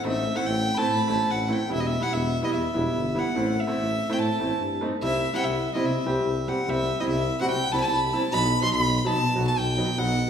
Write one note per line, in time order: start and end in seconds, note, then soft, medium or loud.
0.05 0.30 A1 medium
0.05 0.21 A3 medium
0.05 0.21 C4 medium
0.05 0.21 D#4 medium
0.05 0.37 E5 medium
0.35 0.57 A3 medium
0.35 0.57 C4 medium
0.35 0.57 E4 medium
0.35 0.48 F#5 medium
0.46 0.71 A1 medium
0.46 0.76 G5 medium
0.74 0.93 A3 medium
0.74 0.93 C4 medium
0.74 0.90 A5 medium
0.74 0.79 B5 medium
0.79 0.94 E4 medium
0.88 1.01 A2 medium
0.88 1.12 B5 medium
1.08 1.21 A1 medium
1.08 1.29 A3 medium
1.08 1.29 C4 soft
1.08 1.29 E4 medium
1.08 1.32 A5 medium
1.29 1.54 A1 medium
1.29 1.54 F#5 medium
1.48 1.60 A3 medium
1.48 1.60 C4 medium
1.48 1.60 E4 medium
1.48 1.72 G5 medium
1.69 1.96 E1 medium
1.69 1.86 G3 medium
1.69 1.86 B3 medium
1.69 1.86 E4 medium
1.73 1.82 E5 loud
1.80 1.88 D#5 medium
1.86 2.04 E5 medium
2.01 2.22 G3 medium
2.01 2.22 B3 medium
2.01 2.23 E4 medium
2.01 2.14 F#5 medium
2.12 2.37 E1 medium
2.12 2.46 E5 medium
2.42 2.58 G3 medium
2.42 2.58 B3 medium
2.42 2.59 E4 medium
2.42 2.54 D#5 medium
2.54 2.66 E2 medium
2.54 3.20 E5 medium
2.74 2.87 E1 loud
2.74 2.95 G3 medium
2.74 2.95 B3 medium
2.74 2.95 E4 medium
2.95 3.20 G1 medium
3.14 3.25 G3 medium
3.14 3.26 B3 medium
3.14 3.26 E4 medium
3.19 3.61 F#5 medium
3.35 3.61 A1 medium
3.35 3.52 A3 medium
3.35 3.52 C4 medium
3.35 3.52 E4 medium
3.60 4.14 E5 loud
3.67 3.88 A3 medium
3.67 3.88 C4 medium
3.67 3.88 E4 medium
3.78 4.03 A1 medium
4.10 4.25 A3 medium
4.10 4.25 C4 medium
4.10 4.25 E4 medium
4.10 4.21 G5 medium
4.19 4.31 A2 medium
4.19 4.78 A5 medium
4.40 4.53 A1 medium
4.40 4.60 A3 medium
4.40 4.61 C4 medium
4.40 4.61 E4 medium
4.61 4.85 G2 medium
4.81 4.91 A3 medium
4.81 4.92 C4 medium
4.81 4.92 D#4 medium
5.02 5.27 C2 medium
5.02 5.18 G3 medium
5.02 5.18 C4 medium
5.02 5.18 E4 medium
5.02 5.31 E5 loud
5.33 5.54 G3 medium
5.33 5.54 C4 medium
5.33 5.54 E4 medium
5.33 5.37 F#5 medium
5.33 5.41 G5 medium
5.40 5.68 C2 medium
5.40 5.46 F#5 medium
5.44 5.74 E5 medium
5.75 5.90 G3 medium
5.75 5.90 C4 medium
5.75 5.90 E4 medium
5.75 5.87 D#5 medium
5.84 5.97 C3 medium
5.84 6.49 E5 medium
6.05 6.17 C2 medium
6.05 6.26 G3 medium
6.05 6.26 C4 medium
6.05 6.26 G4 medium
6.25 6.50 C2 medium
6.47 6.57 G3 medium
6.47 6.58 C4 medium
6.47 6.58 G4 medium
6.47 6.71 F#5 medium
6.67 6.92 C2 medium
6.67 6.83 G3 medium
6.67 6.83 C4 medium
6.67 6.84 G4 medium
6.67 7.02 E5 loud
6.99 7.19 G3 medium
6.99 7.19 C4 medium
6.99 7.20 E4 medium
6.99 7.09 D#5 medium
7.08 7.33 C2 loud
7.08 7.38 E5 medium
7.40 7.56 G3 medium
7.40 7.55 C4 medium
7.40 7.56 F#4 medium
7.40 7.50 F#5 medium
7.49 7.62 C3 medium
7.49 7.73 G5 medium
7.70 7.83 C2 loud
7.70 7.92 G3 medium
7.70 7.92 C4 medium
7.70 7.92 E4 medium
7.70 7.76 A5 medium
7.70 7.82 B5 medium
7.80 7.92 A5 medium
7.90 8.15 C2 medium
7.90 8.11 B5 medium
8.13 8.23 G3 medium
8.13 8.23 C4 medium
8.13 8.23 E4 medium
8.13 8.35 A5 medium
8.32 8.57 B1 medium
8.32 8.48 F#3 medium
8.32 8.48 B3 medium
8.32 8.48 D#4 medium
8.32 8.63 B5 loud
8.62 8.83 F#3 medium
8.62 8.83 B3 medium
8.62 8.83 D#4 medium
8.62 8.73 C6 medium
8.74 8.98 B1 medium
8.74 8.98 B5 loud
8.98 9.08 B5 medium
9.05 9.20 F#3 medium
9.05 9.21 B3 medium
9.05 9.21 D#4 medium
9.05 9.47 A5 loud
9.14 9.27 B2 medium
9.35 9.48 B1 medium
9.35 9.56 F#3 medium
9.35 9.56 B3 medium
9.35 9.56 F#4 medium
9.48 9.59 A5 medium
9.56 9.81 B1 medium
9.56 10.00 G5 medium
9.78 9.87 F#3 medium
9.78 9.88 B3 medium
9.78 9.88 D#4 medium
9.98 10.22 B1 medium
9.98 10.13 F#3 medium
9.98 10.13 B3 medium
9.98 10.13 D#4 medium
9.98 10.29 F#5 loud